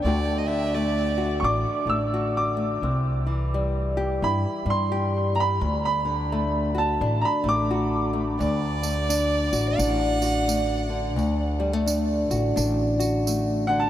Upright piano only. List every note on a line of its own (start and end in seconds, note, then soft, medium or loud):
1.40 1.45 C#6 medium
1.44 1.89 D6 medium
1.89 2.35 E6 medium
2.37 3.72 D6 medium
4.24 4.68 B5 medium
4.70 5.37 C6 medium
5.36 5.41 A#5 medium
5.40 5.84 B5 medium
5.85 6.75 B5 medium
6.78 7.23 A5 medium
7.21 7.28 A#5 medium
7.21 7.47 B5 medium
7.49 8.38 D6 loud
13.67 13.81 F#5 medium
13.80 13.90 A5 medium